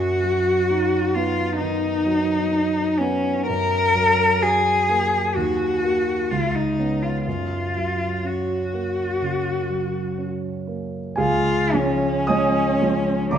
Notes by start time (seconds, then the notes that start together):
Already playing: F#2 F#4
0.23 F#3
0.70 D#4
1.15 B3 F4
1.58 D#3 D#4
2.06 F#3
2.51 D#4
2.98 B3 C#4
3.46 F#2 A#4
3.95 F#3
4.41 F#4 G#4
4.89 A#3
5.35 D#2 F#4
5.83 A#3 F#4
6.31 C#2 F4
6.55 D#4
6.79 B3 C#4
7.02 F4
7.26 F#2 F4
7.77 F#3
8.24 C#4 F#4
8.73 A#3
9.22 C#3
9.70 F#3
10.18 C#4
10.67 A#3
11.16 C#2 G#4 F5 G#5
11.21 F4
11.73 F3 G#3 C#4
12.27 F3 G#3 C#4 D#5 G#5 D#6
12.81 F3 G#3 C#4
13.31 C#2 A#3 D5 A#5 D6